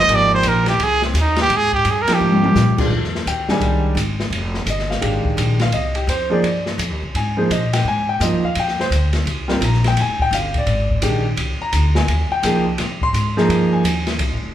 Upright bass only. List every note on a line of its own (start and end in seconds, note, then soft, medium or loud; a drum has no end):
0.08 0.42 G#1 medium
0.44 0.78 A#1 medium
0.79 1.13 C2 medium
1.13 1.48 D#2 medium
1.49 1.84 G#2 medium
1.85 2.06 G2 medium
2.08 muted upright bass stroke soft
2.20 2.55 G#2 medium
2.55 2.90 A#2 loud
2.90 3.25 F2 medium
3.26 3.47 D#2 medium
3.48 muted upright bass stroke soft
3.60 3.94 C2 medium
3.95 4.30 G#1 medium
4.30 4.66 F1 medium
4.66 5.01 G1 medium
5.02 5.23 G#1 medium
5.25 muted upright bass stroke soft
5.37 5.72 A#1 loud
5.73 6.07 C2 medium
6.07 6.42 F2 medium
6.42 6.78 G2 medium
6.78 6.90 F2 loud
6.90 7.02 D#2 medium
7.03 7.14 C2 medium
7.15 7.49 G#2 medium
7.50 7.84 A#2 medium
7.84 8.19 G#2 medium
8.20 8.33 G2 medium
8.32 8.43 F2 medium
8.43 8.55 D#2 medium
8.56 8.90 F2 medium
8.90 9.25 D2 medium
9.25 9.60 C2 medium
9.61 9.96 A#1 medium
9.97 10.18 F1 medium
10.19 muted upright bass stroke soft
10.31 10.66 G1 medium
10.66 11.01 G#1 medium
11.02 11.36 A#1 loud
11.36 11.58 C2 medium
11.59 muted upright bass stroke soft
11.72 12.07 D2 medium
12.08 12.29 D#2 medium
12.31 muted upright bass stroke soft
12.43 12.77 C2 loud
12.78 13.12 C3 medium
13.13 13.48 G#2 medium
13.49 13.83 G2 medium
13.84 14.18 D#2 medium
14.19 14.30 C2 medium
14.30 14.42 G#1 medium
14.42 14.54 F1 medium